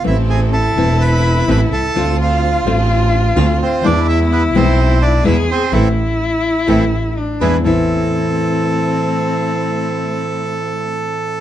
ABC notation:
X:1
M:4/4
L:1/8
Q:1/4=126
K:Am
V:1 name="Bandoneon"
[Ee] [^G^g] [Aa]2 [Bb]2 [Bb] [Aa]- | [Aa] [Ff]2 z4 [Cc] | [Dd] [Ee] [B,B] [Cc]2 [Dd] [Ee] [Cc] | [CEA] z3 [CEA] z2 [E^GB] |
A8- | A8 |]
V:2 name="Cello"
C2 E6 | F8 | E6 ^G2 | E6 D2 |
C8- | C8 |]
V:3 name="String section"
[CEA]3 [CEA]3 [CEA] z | [CDF]3 [CDF]3 [CDF] z | [^G,B,E]3 [G,E]3 [G,B,E] z | [A,CE] z3 [A,CE] z2 [B,DE] |
[A,CE]8- | [A,CE]8 |]
V:4 name="Nylon-string guitar"
[E,A,CE] z2 [E,A,CE] z2 [E,A,CE] z | [D,A,CF] z2 [D,A,CF] z2 [D,A,CF] z | [B,,E,^G,B,E] z2 [B,,E,G,B,E] z2 [B,,E,G,B,E] z | [E,A,C] z3 [E,A,C] z2 [E,^G,B,] |
[A,,E,A,CE]8- | [A,,E,A,CE]8 |]
V:5 name="Double bass" clef=bass
A,,,3 E,,,3 A,,, C,, | D,,3 A,,,3 D,, z | E,,3 B,,,3 E,, z | A,,, z3 A,,, z2 E,, |
A,,, z6 z | z8 |]